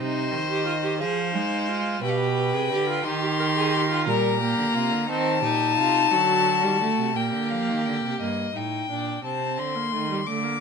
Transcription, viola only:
Already playing: D#4
0.48 G4
0.66 F4
0.83 G4
0.99 G#4
1.34 D#4
1.68 F4
2.03 G4
2.54 G#4
2.71 G4
2.89 F4
3.04 D#4
3.22 G4
3.39 A#4
3.56 G#4
3.73 G4
3.90 F4
4.07 G3
4.41 A#3
5.09 C4
5.44 D#4
6.12 F#3
6.63 G3
6.81 A3
7.15 A#3
8.20 A#3
8.55 D#4
8.90 D4
9.24 C4
9.75 A#3
9.92 A3
10.10 G3
10.26 A3
10.44 A#3

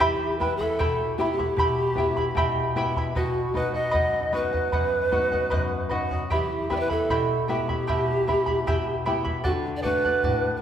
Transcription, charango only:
0.00 E4 G4 E5 G5 B5
0.40 E4 E5 G5 B5
0.61 E4 E5 B5
0.79 E4 G4 E5 G5 B5
1.19 E4 E5 G5 B5
1.39 E4 E5 B5
1.58 E4 G4 E5 G5 B5
1.98 E4 E5 G5 B5
2.17 E4 E5 B5
2.37 E4 G4 E5 G5 B5
2.76 E4 E5 G5 B5
2.97 E4 E5 B5
3.16 B4 D#5 F#5
3.55 B4 D#5 F#5
3.74 D#5 F#5
3.91 B4 D#5 F#5
4.32 B4 D#5 F#5
4.52 D#5 F#5
4.72 B4 D#5 F#5
5.11 B4 D#5 F#5
5.32 D#5 F#5
5.50 B4 D#5 F#5
5.89 B4 D#5 F#5
6.11 D#5 F#5
6.30 E4 G4 E5 G5 B5
6.70 E4 E5 G5 B5
6.89 E4 E5 B5
7.10 E4 G4 E5 G5 B5
7.48 E4 E5 G5 B5
7.69 E4 E5 B5
7.87 E4 G4 E5 G5 B5
8.27 E4 E5 G5 B5
8.46 E4 E5 B5
8.67 E4 G4 E5 G5 B5
9.06 E4 E5 G5 B5
9.25 E4 E5 B5
9.44 A4 D5 F#5
9.82 A4 D5 F#5
10.05 D5 F#5
10.23 A4 D5 F#5

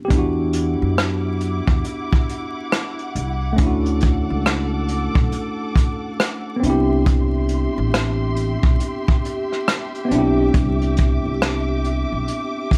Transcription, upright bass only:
0.11 E2
0.82 F#2
1.68 E2
3.15 C2
3.59 D2
4.30 C#2
5.15 B1
6.63 C2
7.78 A1
8.64 B1
10.11 B1
10.54 C2
11.25 C2
12.12 B1

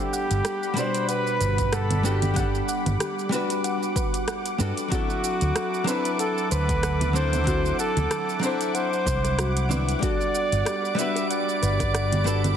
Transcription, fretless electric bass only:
0.31 G1
1.41 G1
2.86 G1
4.60 G2
5.42 D2
6.52 D2
7.97 D2
9.07 C2
10.52 G1
11.63 G1

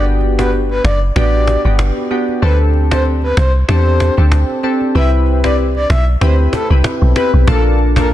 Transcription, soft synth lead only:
0.39 B4
0.71 B4
0.85 D5
1.16 D5
2.43 B4
2.92 C5
3.23 B4
3.38 C5
3.69 C5
4.96 E5
5.44 D5
5.76 D5
5.90 E5
6.22 C5
6.53 A4
7.16 B4
7.48 A4
7.97 A#4

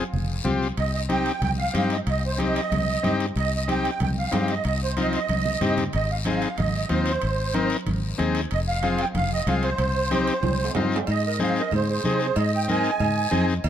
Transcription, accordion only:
0.78 D#5
0.94 D#5
1.11 G5
1.44 G5
1.59 F5
1.93 D#5
2.09 D#5
2.26 C5
2.43 D#5
2.57 D#5
3.38 D#5
3.55 D#5
3.71 G5
4.03 G5
4.18 F5
4.51 D#5
4.67 D#5
4.83 C5
4.99 D#5
5.15 D#5
5.95 D#5
6.11 F5
6.28 F5
6.58 D#5
6.92 C5
7.08 C5
8.53 D#5
8.68 F5
9.01 G5
9.17 F5
9.33 D#5
9.48 F5
9.63 C5
11.10 D#5
11.26 D#5
11.43 F5
11.59 D#5
11.75 C5
11.89 C5
12.06 C5
12.23 C5
12.39 D#5
12.54 G5
12.71 G#5

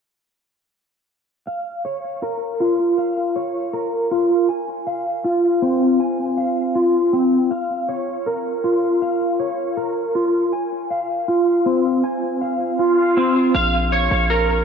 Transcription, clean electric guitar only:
1.47 F5
1.85 C#5
2.23 A#4
2.60 F4
2.98 F5
3.36 C#5
3.73 A#4
4.11 F4
4.49 G#5
4.87 F5
5.24 F4
5.62 C4
6.00 G#5
6.38 F5
6.75 F4
7.13 C4
7.51 F5
7.89 C#5
8.26 A#4
8.64 F4
9.02 F5
9.40 C#5
9.77 A#4
10.15 F4
10.53 G#5
10.90 F5
11.28 F4
11.66 C4
12.04 G#5
12.41 F5
12.79 F4
13.17 C4
13.55 F5
13.92 C#5
14.30 A#4

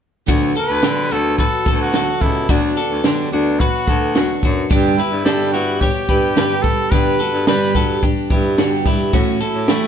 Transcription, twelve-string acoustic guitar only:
0.26 D3 F#3 B3 F#4 A4
0.55 B3 F#4 A4
0.82 D3 F#3 B3 F#4 A4
1.10 B3 F#4 A4
1.38 F#3 B3 F#4 A4
1.65 B3 F#4 A4
1.92 D3 F#3 B3 F#4 A4
2.20 B3 F#4 A4
2.48 D3 F#3 B3 F#4 A4
2.78 B3 F#4 A4
3.04 D3 F#3 B3 F#4 A4
3.33 B3 F#4 A4
3.60 F#3 B3 F#4 A4
3.87 B3 F#4 A4
4.14 D3 F#3 B3 F#4 A4
4.42 B3 F#4 A4
4.69 G2 D3 G3 B3 D4 G4
4.97 G3 B3 D4 G4
5.25 G2 D3 G3 B3 D4 G4
5.53 G3 B3 D4 G4
5.79 G3 B3 D4 G4
6.07 G3 B3 D4 G4
6.35 G2 D3 G3 B3 D4 G4
6.65 G3 B3 D4 G4
6.92 G2 D3 G3 B3 D4 G4
7.20 G3 B3 D4 G4
7.47 G2 D3 G3 B3 D4 G4
7.75 G3 B3 D4 G4
8.02 G3 B3 D4 G4
8.30 G3 B3 D4 G4
8.58 G2 D3 G3 B3 D4 G4
8.86 G3 B3 D4 G4
9.13 A2 E3 F#3 A3 C#4 F#4
9.41 F#3 A3 C#4 F#4
9.68 A2 E3 F#3 A3 C#4 F#4

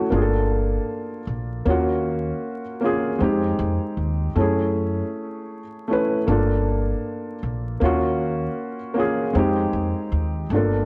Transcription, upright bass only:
0.12 G1
1.27 A#1
1.66 D#2
3.20 F2
3.59 F2
3.97 D#2
4.36 F#2
6.28 G1
7.43 A#1
7.82 D#2
9.35 F2
9.73 F2
10.12 D#2
10.50 G1

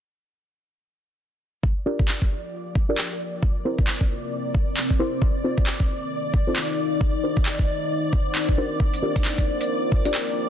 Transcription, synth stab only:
1.86 D4 F4 G4 A#4 D5
2.89 D4 F4 G4 A#4 D5
3.65 C4 E4 G4 A#4 C5
4.99 C4 E4 G4 A#4 C5
5.44 C4 D#4 F4 A4 C5
6.47 C4 D#4 F4 A4 C5
7.23 D4 D#4 F#4 A#4 C5
8.58 D4 D#4 F#4 A#4 C5
9.02 D4 F4 G4 A#4 D5
10.05 D4 F4 G4 A#4 D5

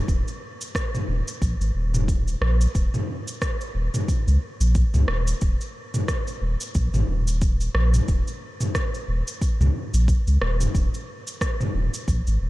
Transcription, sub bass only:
0.08 D#1
1.08 D#1
1.42 A#1
1.60 G#1
1.75 D#1
2.41 A#1
2.75 D#1
3.75 D#1
4.27 C#2
4.61 A#1
4.94 C#2
5.08 D#1
5.42 D#1
6.42 D#1
6.75 A#1
6.94 G#1
7.08 D#1
7.75 A#1
8.08 D#1
9.08 D#1
9.60 C#2
9.94 A#1
10.27 C#2
10.41 D#1
10.75 D#1
11.74 D#1
12.08 A#1
12.27 G#1
12.41 D#1

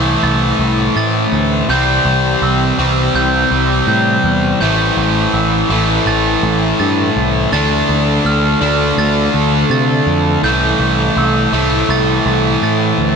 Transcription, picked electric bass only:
Already playing: C2
0.23 C2
0.59 C2
0.96 A2
1.32 D2
1.69 C2
2.05 C2
2.42 C2
2.78 C2
3.14 C2
3.51 C2
3.87 A2
4.24 E2
4.60 A1
4.97 A1
5.34 A1
5.70 A1
6.06 A1
6.43 A1
6.80 G2
7.16 C2
7.52 D2
7.89 D2
8.25 D2
8.62 D2
8.98 D2
9.34 D2
9.70 C3
10.07 F2
10.43 C2
10.79 C2
11.17 C2
11.52 C2
11.89 C2
12.26 C2
12.62 A2
12.98 D2

